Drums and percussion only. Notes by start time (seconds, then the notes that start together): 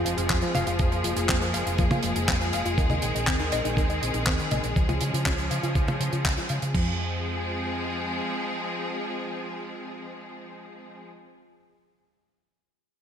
0.06 closed hi-hat
0.18 closed hi-hat
0.30 kick, clap, closed hi-hat
0.42 closed hi-hat
0.55 closed hi-hat, high tom
0.67 closed hi-hat
0.79 kick, closed hi-hat
0.92 closed hi-hat
1.04 closed hi-hat
1.17 closed hi-hat
1.29 kick, clap, closed hi-hat
1.42 closed hi-hat
1.54 closed hi-hat
1.67 closed hi-hat
1.78 kick, closed hi-hat
1.91 closed hi-hat, high tom
2.03 closed hi-hat
2.16 closed hi-hat
2.28 kick, clap, closed hi-hat
2.41 closed hi-hat
2.53 closed hi-hat
2.66 closed hi-hat
2.78 kick, closed hi-hat
2.90 closed hi-hat, high tom
3.02 closed hi-hat
3.16 closed hi-hat
3.27 kick, clap, closed hi-hat
3.39 closed hi-hat
3.52 closed hi-hat
3.65 closed hi-hat
3.77 kick, closed hi-hat
3.90 closed hi-hat
4.03 closed hi-hat
4.14 closed hi-hat
4.26 kick, clap, closed hi-hat
4.40 closed hi-hat
4.51 closed hi-hat, high tom
4.64 closed hi-hat
4.76 kick, closed hi-hat
4.89 closed hi-hat, high tom
5.01 closed hi-hat
5.14 closed hi-hat
5.26 kick, clap, closed hi-hat
5.38 closed hi-hat
5.51 closed hi-hat
5.63 closed hi-hat
5.75 kick, closed hi-hat
5.88 closed hi-hat, high tom
6.01 closed hi-hat
6.13 closed hi-hat
6.25 kick, clap, closed hi-hat
6.38 closed hi-hat
6.49 closed hi-hat
6.62 closed hi-hat
6.75 kick, crash